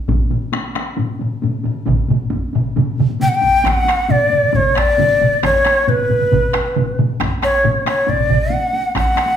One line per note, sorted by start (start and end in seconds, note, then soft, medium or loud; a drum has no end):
0.08 taiko loud
0.08 taiko low-mid medium
0.08 taiko high medium
0.20 taiko high soft
0.30 taiko low-mid loud
0.30 taiko high medium
0.41 taiko high soft
0.52 taiko rim medium
0.52 taiko high medium
0.64 taiko high soft
0.75 taiko rim medium
0.75 taiko high medium
0.86 taiko high soft
0.97 taiko low-mid medium
0.97 taiko high medium
1.09 taiko high soft
1.19 taiko low-mid medium
1.19 taiko high soft
1.42 taiko low-mid loud
1.42 taiko high medium
1.53 taiko high soft
1.63 taiko low-mid loud
1.63 taiko high medium
1.76 taiko high soft
1.86 taiko medium
1.86 taiko low-mid loud
1.86 taiko mid medium
1.86 taiko high medium
1.97 taiko high soft
2.08 taiko low-mid loud
2.08 taiko mid medium
2.08 taiko high medium
2.20 taiko high soft
2.30 taiko medium
2.30 taiko high medium
2.42 taiko high soft
2.53 taiko low-mid loud
2.53 taiko mid loud
2.53 taiko high medium
2.66 taiko high soft
2.76 taiko low-mid medium
2.76 taiko mid medium
2.76 taiko high medium
2.87 taiko high soft
2.99 taiko low-mid loud
2.99 taiko mid loud
2.99 taiko high soft
3.09 taiko high soft
3.20 3.30 G5 medium
3.20 taiko low-mid medium
3.20 taiko mid medium
3.20 taiko high medium
3.29 3.36 F#5 medium
3.29 taiko high soft
3.35 3.68 G5 medium
3.41 taiko medium
3.41 taiko high medium
3.53 taiko high soft
3.64 4.12 F#5 medium
3.64 taiko rim medium
3.64 taiko loud
3.64 taiko high medium
3.75 taiko high soft
3.85 taiko rim medium
3.85 taiko high medium
3.89 taiko rim medium
4.09 4.57 D5 medium
4.09 taiko low-mid loud
4.09 taiko mid medium
4.09 taiko high medium
4.20 taiko high soft
4.30 taiko low-mid medium
4.30 taiko mid medium
4.30 taiko high medium
4.42 taiko low-mid medium
4.42 taiko mid medium
4.42 taiko high soft
4.53 4.80 C#5 medium
4.53 taiko medium
4.53 taiko low-mid medium
4.53 taiko mid loud
4.53 taiko high medium
4.64 taiko high soft
4.76 5.44 D5 medium
4.76 taiko rim medium
4.76 taiko medium
4.76 taiko high medium
4.78 taiko rim medium
4.88 taiko high soft
4.98 taiko low-mid medium
4.98 taiko mid loud
4.98 taiko high medium
5.10 taiko high soft
5.20 taiko low-mid loud
5.20 taiko mid medium
5.20 taiko high medium
5.31 taiko high soft
5.43 5.90 C#5 medium
5.43 taiko rim medium
5.43 taiko medium
5.43 taiko high medium
5.55 taiko high soft
5.65 taiko rim medium
5.65 taiko high medium
5.88 6.99 B4 medium
5.88 taiko low-mid loud
5.88 taiko mid medium
5.88 taiko high medium
6.00 taiko high soft
6.10 taiko low-mid medium
6.10 taiko mid medium
6.10 taiko high medium
6.21 taiko low-mid medium
6.21 taiko mid medium
6.21 taiko high soft
6.32 taiko medium
6.32 taiko low-mid medium
6.32 taiko mid loud
6.32 taiko high medium
6.44 taiko high soft
6.54 taiko rim medium
6.54 taiko medium
6.54 taiko high soft
6.67 taiko high soft
6.76 taiko low-mid medium
6.76 taiko mid loud
6.76 taiko high medium
6.88 taiko high soft
6.99 taiko low-mid loud
6.99 taiko mid loud
6.99 taiko high soft
7.09 taiko high soft
7.20 taiko rim medium
7.20 taiko loud
7.20 taiko high medium
7.31 taiko high soft
7.43 7.84 C#5 medium
7.43 taiko rim medium
7.43 taiko high soft
7.64 taiko low-mid loud
7.64 taiko mid loud
7.64 taiko high medium
7.76 taiko high soft
7.86 8.11 C#5 medium
7.86 taiko rim medium
7.86 taiko high medium
7.97 taiko high soft
8.07 8.53 D5 medium
8.07 taiko medium
8.07 taiko low-mid medium
8.07 taiko mid medium
8.07 taiko high medium
8.18 taiko low-mid medium
8.18 taiko mid medium
8.18 taiko high soft
8.29 taiko medium
8.29 taiko low-mid loud
8.29 taiko mid loud
8.29 taiko high soft
8.40 taiko high soft
8.50 8.95 F#5 medium
8.50 taiko high medium
8.62 taiko high soft
8.73 taiko high medium
8.84 taiko high soft
8.95 9.37 F#5 loud
8.95 taiko rim medium
8.95 taiko medium
8.95 taiko high medium
9.06 taiko high soft
9.16 taiko rim medium
9.16 taiko high medium
9.26 taiko high soft